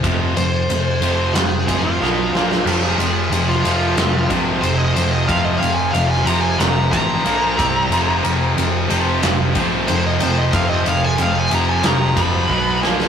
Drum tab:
CC |----------------|x---------------|----------------|----------------|
RD |x-x-x-x-x-x-----|--x-x-x-x-x-x-x-|x-x-x-x-x-x-x-x-|x-x-x-x-x-x-x-x-|
SD |--------o---o-oo|-----o--o-------|-----o--o-------|--------o-------|
BD |o---------o-----|----------o-----|o---------o---o-|----------o-----|

CC |----------------|
RD |x-x-x-x-x-x-----|
SD |--------o-----oo|
BD |o---------o-o---|